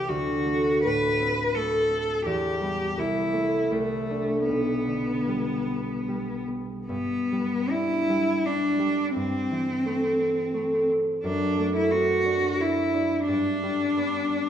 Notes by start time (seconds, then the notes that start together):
Already playing: C2 E3 A3 C4 E4 G4
0.09 D2 F#4
0.46 A3
0.84 A2 B4
1.20 C4
1.55 A3 A4
1.90 C4
2.25 E2 G4
2.61 G3 B3
2.97 C2 E4
3.33 A3 C4
3.71 C2 A3
4.10 A3 D4
4.48 B1 B3
4.87 D3
5.28 G3
5.67 B3
6.08 G3
6.48 B3
6.87 G2 B3
7.32 G3
7.70 D4 E4
8.10 G3
8.46 D4
8.79 G3
9.16 G2 C4
9.51 E3
9.85 A3
10.20 C4
10.54 A3
10.89 C4
11.24 F#2 D4
11.58 A3
11.76 E4
11.92 C4 F#4
12.25 D4
12.60 C4 E4
12.94 D4
13.27 G2 D4
13.63 G3
13.97 B3
14.30 D4